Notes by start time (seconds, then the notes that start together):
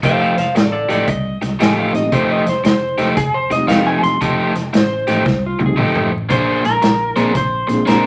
0.03 F1 F3 A3 D#4 G4 C5 F5, kick, closed hi-hat
0.20 C5 F5
0.37 F1 C5 F5, muted overdriven electric guitar stroke, snare, closed hi-hat
0.54 A1 A4 D5, muted overdriven electric guitar stroke, snare, closed hi-hat
0.72 A4 D5
0.89 A1 F3 A3 D#4 G4 A4 D5, snare, closed hi-hat
1.07 C2 D#5, muted overdriven electric guitar stroke, kick, closed hi-hat
1.42 C2, muted overdriven electric guitar stroke, snare, closed hi-hat
1.59 A1 F3 A3 D#4 G4 G#5, snare, closed hi-hat
1.79 F5
1.93 A1 F3 A3 C4 D#4 G4 D#5, muted overdriven electric guitar stroke, snare, closed hi-hat
2.12 F1 F3 A3 D#4 G4 C5, kick, closed hi-hat
2.31 D#5
2.46 F1 C5, muted overdriven electric guitar stroke, snare, closed hi-hat
2.64 F1 C5, muted overdriven electric guitar stroke, snare, closed hi-hat
2.98 F1 F3 A3 D#4 G4, snare, closed hi-hat
3.16 F1 G#4, muted overdriven electric guitar stroke, kick, snare, closed hi-hat
3.34 C5
3.50 F1 F3 A3 C4 D#4 G4 D#5, muted overdriven electric guitar stroke, snare, closed hi-hat
3.67 F1 F3 A3 D#4 G4 F5, snare, closed hi-hat
3.87 G#5
4.03 F1 C6, muted overdriven electric guitar stroke, snare, closed hi-hat
4.21 F1 F3 A3 D#4 G4 A5, kick, closed hi-hat
4.55 F1, muted overdriven electric guitar stroke, snare, closed hi-hat
4.73 A1 C5, muted overdriven electric guitar stroke, snare, closed hi-hat
5.07 A1 F3 A3 D#4 G4, snare, closed hi-hat
5.25 C2, muted overdriven electric guitar stroke, kick, snare
5.46 F4
5.59 C2 F3 A3 C4 D#4 G4, muted overdriven electric guitar stroke, high tom
5.66 G#4
5.76 A1 F3 A3 D#4 G4, mid tom
5.83 A4
5.95 mid tom
6.12 A1, muted overdriven electric guitar stroke
6.29 A#1 A#3 D4 G#4 C5, kick, closed hi-hat
6.64 A#1 A#4, muted overdriven electric guitar stroke, snare, closed hi-hat
6.82 A#1, muted overdriven electric guitar stroke, snare, closed hi-hat
7.15 A#1 F3 A#3 C4 D4 G#4 C5, snare, closed hi-hat
7.35 A#1 C5, muted overdriven electric guitar stroke, kick, snare, closed hi-hat
7.67 A#1 F3 A#3 C4 D4 G#4, muted overdriven electric guitar stroke, snare, closed hi-hat
7.86 A#1 A#3 D4 G#4 A#4 C5, snare, closed hi-hat